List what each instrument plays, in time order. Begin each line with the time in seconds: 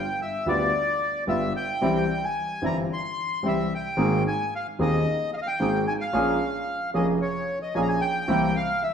Already playing: bandoneon G5
0.22 bandoneon E5
0.46 grand piano D2 D3 G3 B3 F4, bandoneon G3 B3 F4 D5
1.27 grand piano G1 G2 D3 G3 B3 F4, bandoneon G3 B3 F4 E5
1.56 bandoneon G5
1.81 grand piano C2 C3 E3 G3 C4 G4, bandoneon G3 C4 E4
2.25 bandoneon G#5
2.62 grand piano G1 G2 E3 G3 C4 G4, bandoneon G3 C4 E4
2.66 bandoneon A#5
2.93 bandoneon C6
3.43 grand piano C2 C3 E3 G3 C4 G4, bandoneon G3 C4 E4
3.47 bandoneon E5
3.75 bandoneon G5
3.97 grand piano G#1 G#2 D#3 A#3 C4 G#4, bandoneon A#3 C4 G#4
4.28 bandoneon G#5
4.56 bandoneon F5
4.79 grand piano D#1 D#2 D#3 A#3 C4 G#4, bandoneon A#3 C4 G#4 D#5
5.37 bandoneon D#5
5.42 bandoneon F5
5.47 bandoneon G5
5.59 grand piano G#1 G#2 D#3 A#3 C4 G#4, bandoneon A#3 C4 G#4
5.88 bandoneon G#5
6.00 bandoneon F5
6.13 grand piano A#1 A#2 F3 A#3 C#4 G#4, bandoneon A#3 C#4 G#4
6.94 grand piano F1 F2 F3 A#3 C#4 G#4, bandoneon A#3 C#4 G#4 D#5
7.22 bandoneon C#5
7.62 bandoneon D#5
7.75 grand piano A#1 A#2 F3 A#3 C#4 G#4, bandoneon A#3 C#4 G#4 G#5
7.82 bandoneon A#5
7.89 bandoneon G#5
8.01 bandoneon G5
8.28 grand piano C2 C3 E3 A#3 C4 G4, bandoneon A#3 C4 E4
8.56 bandoneon F5
8.83 bandoneon E5